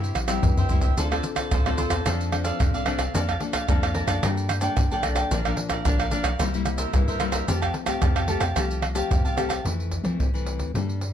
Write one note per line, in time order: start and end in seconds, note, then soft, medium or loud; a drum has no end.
0.00 0.12 G2 loud
0.00 0.41 C3 medium
0.00 0.26 G3 medium
0.00 0.26 C4 medium
0.00 0.14 E4 soft
0.00 0.26 E4 medium
0.00 0.15 G4 soft
0.00 0.15 C5 medium
0.00 0.15 E5 medium
0.00 pandeiro soft
0.00 maracas soft
0.15 0.40 A#1 loud
0.15 muted cavaquinho stroke soft
0.15 pandeiro medium
0.15 tamborim medium
0.15 maracas medium
0.28 0.65 G3 medium
0.28 0.65 C4 medium
0.28 0.66 E4 medium
0.28 0.56 G4 medium
0.28 0.55 C5 medium
0.28 0.55 E5 medium
0.28 pandeiro medium
0.28 tamborim medium
0.28 maracas medium
0.43 0.68 C2 medium
0.43 0.95 G2 medium
0.43 surdo medium
0.43 pandeiro medium
0.43 maracas medium
0.43 surdo loud
0.57 0.68 G4 medium
0.57 0.69 C5 medium
0.57 0.69 E5 medium
0.57 surdo medium
0.57 pandeiro soft
0.57 maracas soft
0.69 0.94 D2 medium
0.69 0.93 G3 medium
0.69 0.93 C4 medium
0.69 0.82 E4 soft
0.69 0.93 E4 medium
0.69 0.82 G4 medium
0.69 0.81 C5 medium
0.69 0.81 E5 medium
0.69 pandeiro medium
0.69 maracas medium
0.69 surdo medium
0.82 0.96 G4 medium
0.82 0.96 C5 medium
0.82 0.95 E5 medium
0.82 pandeiro medium
0.82 maracas medium
0.82 surdo medium
0.97 1.20 D2 loud
0.97 1.49 D3 medium
0.97 1.07 C4 medium
0.97 1.10 F4 soft
0.97 1.07 F4 medium
0.97 1.10 A4 soft
0.97 1.07 A4 medium
0.97 1.10 C5 medium
0.97 1.10 D5 medium
0.97 pandeiro medium
0.97 maracas medium
0.97 surdo medium
1.11 1.61 C4 medium
1.11 1.62 F4 medium
1.11 1.62 A4 medium
1.11 1.23 A4 medium
1.11 1.23 C5 medium
1.11 1.24 D5 medium
1.11 pandeiro soft
1.11 tamborim medium
1.11 maracas soft
1.11 surdo soft
1.23 muted cavaquinho stroke soft
1.23 pandeiro medium
1.23 maracas medium
1.36 1.50 A4 medium
1.36 1.50 C5 medium
1.36 1.50 D5 medium
1.36 pandeiro medium
1.36 tamborim medium
1.36 maracas medium
1.36 surdo soft
1.51 1.86 D2 loud
1.51 2.03 A2 medium
1.51 1.64 F4 medium
1.51 1.65 A4 medium
1.51 1.65 C5 medium
1.51 1.65 D5 medium
1.51 pandeiro medium
1.51 tamborim medium
1.51 maracas medium
1.51 surdo loud
1.66 2.02 C4 medium
1.66 2.02 F4 medium
1.66 2.03 A4 medium
1.66 1.77 A4 medium
1.66 1.78 C5 medium
1.66 1.78 D5 medium
1.66 pandeiro soft
1.66 tamborim medium
1.66 maracas soft
1.77 1.91 F4 medium
1.77 1.91 A4 medium
1.77 1.90 C5 medium
1.77 1.89 D5 medium
1.77 pandeiro medium
1.77 maracas medium
1.90 2.03 E2 medium
1.90 2.05 A4 medium
1.90 2.04 C5 medium
1.90 2.04 D5 medium
1.90 pandeiro medium
1.90 tamborim medium
1.90 maracas medium
1.90 surdo soft
2.06 2.52 F2 loud
2.06 2.58 F3 medium
2.06 2.29 C4 medium
2.06 2.31 D4 soft
2.06 2.29 D4 medium
2.06 2.31 A4 medium
2.06 2.29 A4 medium
2.06 2.31 D5 soft
2.06 2.32 F5 medium
2.06 pandeiro medium
2.06 tamborim medium
2.06 maracas medium
2.06 surdo medium
2.21 pandeiro soft
2.21 maracas soft
2.32 2.82 C4 medium
2.32 2.83 D4 medium
2.32 2.83 A4 medium
2.32 muted cavaquinho stroke soft
2.32 pandeiro medium
2.32 tamborim medium
2.44 2.72 A4 medium
2.44 2.72 D5 medium
2.44 2.71 F5 medium
2.44 pandeiro medium
2.44 maracas medium
2.60 2.72 F2 loud
2.60 3.12 C3 medium
2.60 pandeiro medium
2.60 tamborim medium
2.60 maracas medium
2.60 surdo loud
2.74 3.09 C2 medium
2.74 2.85 A4 medium
2.74 2.86 D5 medium
2.74 2.86 F5 medium
2.74 pandeiro soft
2.74 maracas soft
2.86 3.04 C4 medium
2.86 2.99 D4 soft
2.86 3.04 D4 medium
2.86 2.99 A4 medium
2.86 3.05 A4 medium
2.86 2.98 D5 medium
2.86 2.98 F5 medium
2.86 pandeiro medium
2.86 tamborim medium
2.86 surdo soft
2.99 3.13 A4 medium
2.99 3.13 D5 medium
2.99 3.12 F5 medium
2.99 pandeiro medium
2.99 tamborim medium
2.99 maracas medium
2.99 surdo soft
3.14 3.37 F2 loud
3.14 3.66 F3 medium
3.14 3.30 A#3 medium
3.14 3.31 D4 medium
3.14 3.31 A4 medium
3.14 3.27 A#4 soft
3.14 3.27 D5 medium
3.14 3.27 F5 medium
3.14 3.28 A5 medium
3.14 pandeiro medium
3.14 maracas medium
3.14 surdo medium
3.29 3.40 D5 medium
3.29 3.40 F5 medium
3.29 3.40 A5 medium
3.29 pandeiro soft
3.29 tamborim medium
3.29 maracas soft
3.29 surdo soft
3.40 3.64 A#3 medium
3.40 3.64 D4 medium
3.40 3.64 A4 medium
3.40 muted cavaquinho stroke soft
3.40 pandeiro medium
3.53 3.67 D5 medium
3.53 3.67 F5 medium
3.53 3.67 A5 medium
3.53 pandeiro medium
3.53 tamborim medium
3.53 maracas medium
3.53 surdo soft
3.68 4.03 F2 loud
3.68 4.20 F3 medium
3.68 4.05 A#3 medium
3.68 4.05 D4 medium
3.68 4.05 A4 medium
3.68 3.81 A#4 medium
3.68 3.81 D5 medium
3.68 3.82 F5 medium
3.68 3.82 A5 medium
3.68 pandeiro medium
3.68 tamborim medium
3.68 maracas medium
3.68 surdo loud
3.83 3.94 D5 medium
3.83 3.94 F5 medium
3.83 3.95 A5 medium
3.83 pandeiro soft
3.83 tamborim medium
3.83 maracas soft
3.94 4.07 A#4 medium
3.94 4.08 D5 medium
3.94 4.07 F5 medium
3.94 4.06 A5 medium
3.94 pandeiro medium
4.07 4.20 F#2 medium
4.07 4.58 A#3 medium
4.07 4.58 D4 medium
4.07 4.58 A4 medium
4.07 4.22 D5 medium
4.07 4.21 F5 medium
4.07 4.21 A5 medium
4.07 pandeiro medium
4.07 tamborim medium
4.07 maracas medium
4.07 surdo soft
4.23 4.69 G2 loud
4.23 4.74 G3 medium
4.23 4.49 A#4 soft
4.23 4.49 D5 medium
4.23 4.49 G5 medium
4.23 4.49 A5 medium
4.23 pandeiro medium
4.23 tamborim medium
4.23 maracas medium
4.23 surdo medium
4.37 pandeiro soft
4.37 maracas soft
4.49 muted cavaquinho stroke soft
4.49 pandeiro medium
4.49 tamborim medium
4.49 maracas medium
4.61 4.85 A#3 medium
4.61 4.85 D4 medium
4.61 4.86 A4 medium
4.61 4.89 D5 medium
4.61 4.89 G5 medium
4.61 4.89 A5 medium
4.61 pandeiro medium
4.61 maracas medium
4.77 4.88 G2 medium
4.77 5.28 D3 medium
4.77 pandeiro medium
4.77 tamborim medium
4.77 maracas medium
4.77 surdo medium
4.91 5.25 B1 medium
4.91 5.29 A#3 medium
4.91 5.30 D4 medium
4.91 5.30 A4 medium
4.91 5.03 D5 medium
4.91 5.03 G5 medium
4.91 5.03 A5 medium
4.91 pandeiro soft
4.91 maracas soft
5.03 5.16 A#4 medium
5.03 5.16 D5 medium
5.03 5.16 G5 medium
5.03 5.15 A5 medium
5.03 pandeiro medium
5.03 tamborim medium
5.03 maracas medium
5.03 surdo soft
5.16 5.30 D5 medium
5.16 5.30 G5 medium
5.16 5.29 A5 medium
5.16 pandeiro medium
5.16 tamborim medium
5.16 maracas medium
5.16 surdo soft
5.31 5.54 A#1 loud
5.31 5.83 A#2 medium
5.31 5.39 F3 medium
5.31 5.40 A#3 medium
5.31 5.44 D4 soft
5.31 5.40 D4 medium
5.31 5.44 A#4 medium
5.31 5.44 D5 medium
5.31 5.45 F5 medium
5.31 pandeiro medium
5.31 maracas medium
5.31 surdo medium
5.45 5.82 F3 medium
5.45 5.82 A#3 medium
5.45 5.82 D4 medium
5.45 5.57 A#4 medium
5.45 5.57 D5 medium
5.45 5.58 F5 medium
5.45 pandeiro soft
5.45 tamborim medium
5.45 maracas soft
5.45 surdo soft
5.57 muted cavaquinho stroke soft
5.57 pandeiro medium
5.69 5.84 A#4 medium
5.69 5.84 D5 medium
5.69 5.84 F5 medium
5.69 pandeiro medium
5.69 tamborim medium
5.69 maracas medium
5.69 surdo soft
5.85 6.20 A#1 loud
5.85 6.08 F3 medium
5.85 6.08 A#3 medium
5.85 5.98 D4 medium
5.85 6.09 D4 medium
5.85 5.98 A#4 medium
5.85 5.99 D5 medium
5.85 5.99 F5 medium
5.85 pandeiro medium
5.85 tamborim medium
5.85 maracas medium
5.85 surdo loud
6.00 6.10 A#4 medium
6.00 6.11 D5 medium
6.00 6.11 F5 medium
6.00 pandeiro soft
6.00 tamborim medium
6.00 maracas soft
6.11 6.30 F3 medium
6.11 6.30 A#3 medium
6.11 6.24 D4 medium
6.11 6.30 D4 medium
6.11 6.24 A#4 medium
6.11 6.23 D5 medium
6.11 6.22 F5 medium
6.11 pandeiro medium
6.11 maracas medium
6.23 6.36 B1 medium
6.23 6.38 A#4 medium
6.23 6.38 D5 medium
6.23 6.37 F5 medium
6.23 pandeiro medium
6.23 tamborim medium
6.23 maracas medium
6.23 surdo soft
6.39 6.86 C2 loud
6.39 6.91 C3 medium
6.39 6.48 G3 medium
6.39 6.48 A#3 medium
6.39 6.65 E4 soft
6.39 6.48 E4 medium
6.39 6.65 A#4 medium
6.39 6.65 C5 medium
6.39 6.65 E5 medium
6.39 pandeiro medium
6.39 tamborim medium
6.39 maracas medium
6.39 surdo medium
6.54 6.90 G3 medium
6.54 6.90 A#3 medium
6.54 6.90 E4 medium
6.54 pandeiro soft
6.54 maracas soft
6.66 muted cavaquinho stroke soft
6.66 pandeiro medium
6.66 tamborim medium
6.66 maracas medium
6.78 7.06 A#4 medium
6.78 7.05 C5 medium
6.78 7.05 E5 medium
6.78 pandeiro medium
6.78 maracas medium
6.93 7.05 C2 loud
6.93 7.45 G2 medium
6.93 7.16 G3 medium
6.93 7.17 A#3 medium
6.93 7.17 E4 medium
6.93 pandeiro medium
6.93 tamborim medium
6.93 maracas medium
6.93 surdo loud
7.08 7.43 C2 medium
7.08 7.19 A#4 medium
7.08 7.19 C5 medium
7.08 7.20 E5 medium
7.08 pandeiro soft
7.08 maracas soft
7.20 7.46 G3 medium
7.20 7.46 A#3 medium
7.20 7.33 E4 medium
7.20 7.46 E4 medium
7.20 7.32 A#4 medium
7.20 7.32 C5 medium
7.20 7.31 E5 medium
7.20 pandeiro medium
7.20 tamborim medium
7.20 maracas medium
7.32 7.47 A#4 medium
7.32 7.46 C5 medium
7.32 7.46 E5 medium
7.32 pandeiro medium
7.32 tamborim medium
7.32 maracas medium
7.32 surdo soft
7.47 7.71 F2 loud
7.47 8.00 F3 medium
7.47 7.84 A3 medium
7.47 7.85 C4 medium
7.47 7.60 G4 medium
7.47 7.85 G4 medium
7.47 7.60 A4 medium
7.47 7.61 F5 medium
7.47 7.60 A5 medium
7.47 pandeiro medium
7.47 maracas medium
7.47 surdo medium
7.62 7.73 G4 medium
7.62 7.73 F5 medium
7.62 7.73 A5 medium
7.62 pandeiro soft
7.62 tamborim medium
7.62 maracas soft
7.62 surdo soft
7.74 muted cavaquinho stroke soft
7.74 pandeiro medium
7.86 8.24 A3 medium
7.86 8.24 C4 medium
7.86 8.24 G4 medium
7.86 8.01 G4 medium
7.86 8.00 F5 medium
7.86 8.00 A5 medium
7.86 pandeiro medium
7.86 tamborim medium
7.86 maracas medium
7.86 surdo soft
8.01 8.37 F2 loud
8.01 8.54 C3 medium
8.01 8.15 G4 medium
8.01 8.14 A4 medium
8.01 8.15 F5 medium
8.01 8.15 A5 medium
8.01 pandeiro medium
8.01 tamborim medium
8.01 maracas medium
8.01 surdo loud
8.16 8.27 G4 medium
8.16 8.28 F5 medium
8.16 8.28 A5 medium
8.16 pandeiro soft
8.16 tamborim medium
8.16 maracas soft
8.28 8.45 A3 medium
8.28 8.45 C4 medium
8.28 8.41 G4 medium
8.28 8.45 G4 medium
8.28 8.41 A4 medium
8.28 8.40 F5 medium
8.28 8.39 A5 medium
8.28 pandeiro medium
8.40 8.53 F2 medium
8.40 8.55 G4 medium
8.40 8.55 F5 medium
8.40 8.54 A5 medium
8.40 pandeiro medium
8.40 tamborim medium
8.40 maracas medium
8.40 surdo soft
8.56 9.03 C2 loud
8.56 9.08 F3 medium
8.56 8.93 A3 medium
8.56 8.93 C4 medium
8.56 8.82 G4 soft
8.56 8.93 G4 medium
8.56 8.81 A4 soft
8.56 8.82 F5 soft
8.56 8.82 A5 medium
8.56 pandeiro medium
8.56 tamborim medium
8.56 maracas medium
8.56 surdo medium
8.71 pandeiro soft
8.71 maracas soft
8.82 muted cavaquinho stroke soft
8.82 pandeiro medium
8.82 tamborim medium
8.95 9.33 A3 medium
8.95 9.33 C4 medium
8.95 9.33 G4 medium
8.95 9.23 G4 medium
8.95 9.23 F5 medium
8.95 9.22 A5 medium
8.95 pandeiro medium
8.95 maracas medium
9.11 9.22 F2 loud
9.11 9.63 C3 medium
9.11 pandeiro medium
9.11 tamborim medium
9.11 maracas medium
9.11 surdo loud
9.25 9.59 C2 medium
9.25 9.36 G4 medium
9.25 9.37 F5 medium
9.25 9.37 A5 medium
9.25 pandeiro soft
9.25 maracas soft
9.37 9.60 A3 medium
9.37 9.61 C4 medium
9.37 9.49 G4 medium
9.37 9.61 G4 medium
9.37 9.50 A4 medium
9.37 9.49 F5 medium
9.37 9.48 A5 medium
9.37 pandeiro medium
9.37 tamborim medium
9.37 maracas medium
9.37 surdo soft
9.49 9.64 G4 medium
9.49 9.64 F5 medium
9.49 9.63 A5 medium
9.49 pandeiro medium
9.49 tamborim medium
9.49 maracas medium
9.49 surdo soft
9.65 10.17 F2 medium
9.65 10.00 F2 loud
9.65 10.02 E3 medium
9.65 10.02 A3 soft
9.65 10.02 C4 medium
9.65 pandeiro medium
9.65 surdo medium
9.80 pandeiro soft
9.91 pandeiro medium
9.91 surdo soft
10.04 10.28 E3 medium
10.04 10.16 F3 medium
10.04 10.28 A3 medium
10.04 10.29 C4 medium
10.04 pandeiro medium
10.04 surdo soft
10.20 10.60 C2 loud
10.20 10.72 C3 medium
10.20 pandeiro medium
10.20 surdo medium
10.34 10.70 E3 medium
10.34 10.71 A3 medium
10.34 10.71 C4 medium
10.34 pandeiro soft
10.47 pandeiro medium
10.58 10.71 D2 medium
10.58 pandeiro medium
10.58 surdo soft
10.74 11.13 G2 loud
10.74 11.13 G3 soft
10.74 11.00 A#3 soft
10.74 11.01 D4 soft
10.74 11.01 A4 medium
10.74 pandeiro medium
10.74 surdo medium
10.89 pandeiro soft
11.01 pandeiro medium